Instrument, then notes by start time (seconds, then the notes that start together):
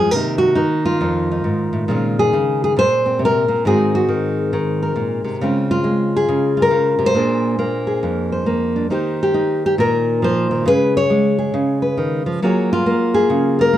nylon-string guitar
Already playing: F2 F3 D#4 G#4
0.00 G#3
0.11 C3 D#3 A#3 A#4
0.16 D#4
0.38 F#4
0.55 D#3 D#4
0.85 F4
1.01 F2 D#4
1.31 D#4
1.44 G#2
1.73 A2
1.88 A#2 C#3 G#3 C4 F4
2.19 G#4
2.33 C#3
2.64 G#4
2.77 A#2 C5
3.06 C4
3.19 C3
3.25 A#4
3.48 A#2
3.65 G#2 D#3 C4 F#4 G#4
3.95 F#4
4.09 D#3
4.53 D#3
4.83 A#4
4.96 A#2
5.24 C3
5.41 C#3 G#3 C4 F4
5.71 F4
5.84 G#3
6.16 G#4
6.28 C#3
6.57 F4
6.62 A#4
6.71 C#3
6.99 C3
7.06 C5
7.14 A#2 A#3 D4 G#4
7.59 A#3
7.87 G#4
8.03 F2
8.32 C5
8.46 A#3
8.76 D4
8.90 D#3 D#4 G4 C5
9.23 G4
9.34 D#4
9.66 G4
9.78 A#2 A#4
10.22 F3 C5
10.51 D#3
10.66 C#3 G#3 G#4 B4
10.97 C#5
11.10 G#3
11.38 G#4
11.54 C#3
11.82 B4
11.97 D#3
12.26 F3
12.42 F#3 A#3 F4 G#4 C#5
12.73 F4
12.86 A#3
13.14 G#4
13.30 C#3
13.59 F4 A#4
13.73 A#3